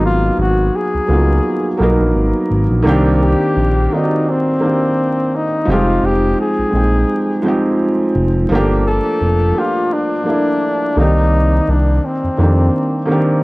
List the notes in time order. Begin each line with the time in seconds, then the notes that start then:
Already playing: G#1 F#3 A#3 B3 D#4 G#4
0.05 F4
0.38 G#1 F#4
0.76 G#4
0.94 C#2
1.07 C#2 F#3 A#3 B3
1.12 D#4 F4
1.77 B1 F#3 A#3 B3
1.82 D#4 A#4
2.00 A#1
2.15 G#1
2.50 G#1
2.71 A#1
2.83 C2 D#3 A#3 C4
2.87 D4 G4
3.23 G4
3.57 A#1
3.91 D#3 A#3 C4 D#4
3.95 F#4 D5
4.03 G4
4.29 C4
4.59 D#3 A#3 C4
4.63 D4 G4
5.36 D#4
5.65 F1 F3 G3 C4
5.70 G#3 D#4 F4 G4
6.03 F1 G4
6.41 G#4
6.59 A#1
6.70 A#1 F3 G#3 C4
6.74 D#4 G5
7.42 F3 G#3 C4
7.46 D#4 G4
8.15 F1
8.49 G1 F3 A3 A#3
8.53 D4 G4
8.87 A4
9.21 F1
9.52 F3 A3 A#3
9.56 D4 F4 G4
9.93 D4
10.23 F3 A3 A#3
10.28 D4 E4
10.96 C2 D#3 A#3 C4 D#4
11.00 G4 D5
11.68 C2 D4
12.05 C4
12.24 F2
12.37 F2 D#3 A#3 C4
12.42 D4 G4
13.05 D#3 A#3 C4
13.10 D4 G4